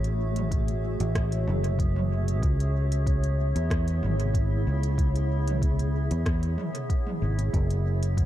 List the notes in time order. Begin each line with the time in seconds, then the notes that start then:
Already playing: A1 A3 F#4 G#4 C#5 E5
0.04 closed hi-hat
0.36 closed hi-hat, mid tom
0.51 kick, closed hi-hat
0.68 closed hi-hat
1.00 A1, closed hi-hat
1.15 kick, cross-stick, closed hi-hat
1.32 closed hi-hat
1.47 F#1, mid tom
1.64 closed hi-hat
1.79 kick, closed hi-hat
1.96 mid tom
2.28 closed hi-hat
2.43 C#2 B3, kick, closed hi-hat
2.60 closed hi-hat
2.92 E4, closed hi-hat
3.07 kick, closed hi-hat
3.24 closed hi-hat
3.56 E2, closed hi-hat
3.70 kick, cross-stick, closed hi-hat
3.88 closed hi-hat
4.03 G#1, mid tom
4.20 closed hi-hat
4.34 kick, closed hi-hat
4.67 C#2
4.83 closed hi-hat
4.98 kick, closed hi-hat
5.16 closed hi-hat
5.48 closed hi-hat, mid tom
5.62 kick, closed hi-hat
5.79 closed hi-hat
6.11 E2, closed hi-hat
6.26 kick, cross-stick, closed hi-hat
6.43 closed hi-hat
6.58 mid tom
6.75 closed hi-hat
6.90 kick, closed hi-hat
7.07 mid tom
7.22 G#1
7.39 closed hi-hat
7.53 F#1 A3, kick, closed hi-hat
7.71 closed hi-hat
7.85 F#4
8.03 closed hi-hat
8.17 kick, closed hi-hat